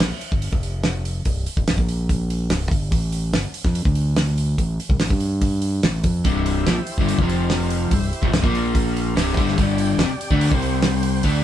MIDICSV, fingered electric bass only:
0, 0, Header, 1, 3, 480
1, 0, Start_track
1, 0, Key_signature, 0, "major"
1, 0, Tempo, 415800
1, 1463, Time_signature, 4, 2, 24, 8
1, 13205, End_track
2, 0, Start_track
2, 0, Title_t, "Fingered electric bass"
2, 0, Program_c, 0, 33
2, 1, Note_on_c, 0, 34, 88
2, 120, Note_off_c, 0, 34, 0
2, 370, Note_on_c, 0, 31, 89
2, 591, Note_off_c, 0, 31, 0
2, 598, Note_on_c, 0, 29, 88
2, 1404, Note_off_c, 0, 29, 0
2, 1448, Note_on_c, 0, 24, 77
2, 1678, Note_off_c, 0, 24, 0
2, 1808, Note_on_c, 0, 27, 92
2, 1926, Note_off_c, 0, 27, 0
2, 1934, Note_on_c, 0, 24, 73
2, 2038, Note_off_c, 0, 24, 0
2, 2044, Note_on_c, 0, 34, 91
2, 2847, Note_off_c, 0, 34, 0
2, 2877, Note_on_c, 0, 24, 92
2, 3112, Note_off_c, 0, 24, 0
2, 3130, Note_on_c, 0, 31, 75
2, 3356, Note_off_c, 0, 31, 0
2, 3363, Note_on_c, 0, 33, 87
2, 3818, Note_off_c, 0, 33, 0
2, 3842, Note_on_c, 0, 31, 93
2, 3962, Note_off_c, 0, 31, 0
2, 4211, Note_on_c, 0, 41, 90
2, 4439, Note_off_c, 0, 41, 0
2, 4448, Note_on_c, 0, 38, 88
2, 5247, Note_off_c, 0, 38, 0
2, 5286, Note_on_c, 0, 33, 74
2, 5516, Note_off_c, 0, 33, 0
2, 5649, Note_on_c, 0, 36, 87
2, 5765, Note_off_c, 0, 36, 0
2, 5774, Note_on_c, 0, 33, 81
2, 5883, Note_off_c, 0, 33, 0
2, 5890, Note_on_c, 0, 43, 86
2, 6688, Note_off_c, 0, 43, 0
2, 6739, Note_on_c, 0, 33, 91
2, 6959, Note_off_c, 0, 33, 0
2, 6966, Note_on_c, 0, 41, 82
2, 7195, Note_off_c, 0, 41, 0
2, 7212, Note_on_c, 0, 24, 78
2, 7661, Note_off_c, 0, 24, 0
2, 7709, Note_on_c, 0, 34, 94
2, 7815, Note_off_c, 0, 34, 0
2, 8055, Note_on_c, 0, 31, 78
2, 8279, Note_off_c, 0, 31, 0
2, 8291, Note_on_c, 0, 29, 97
2, 9087, Note_off_c, 0, 29, 0
2, 9128, Note_on_c, 0, 24, 72
2, 9355, Note_off_c, 0, 24, 0
2, 9492, Note_on_c, 0, 27, 88
2, 9586, Note_off_c, 0, 27, 0
2, 9593, Note_on_c, 0, 24, 85
2, 9716, Note_off_c, 0, 24, 0
2, 9736, Note_on_c, 0, 34, 82
2, 10530, Note_off_c, 0, 34, 0
2, 10566, Note_on_c, 0, 24, 91
2, 10794, Note_off_c, 0, 24, 0
2, 10819, Note_on_c, 0, 31, 86
2, 11042, Note_off_c, 0, 31, 0
2, 11062, Note_on_c, 0, 31, 96
2, 11507, Note_off_c, 0, 31, 0
2, 11524, Note_on_c, 0, 29, 92
2, 11638, Note_off_c, 0, 29, 0
2, 11895, Note_on_c, 0, 38, 75
2, 12120, Note_off_c, 0, 38, 0
2, 12138, Note_on_c, 0, 36, 93
2, 12933, Note_off_c, 0, 36, 0
2, 12977, Note_on_c, 0, 38, 90
2, 13202, Note_off_c, 0, 38, 0
2, 13205, End_track
3, 0, Start_track
3, 0, Title_t, "Muted fingered electric bass strokes"
3, 127, Note_on_c, 9, 29, 41
3, 242, Note_off_c, 9, 29, 0
3, 3969, Note_on_c, 9, 29, 39
3, 4085, Note_off_c, 9, 29, 0
3, 7822, Note_on_c, 9, 29, 37
3, 7938, Note_off_c, 9, 29, 0
3, 13205, End_track
0, 0, End_of_file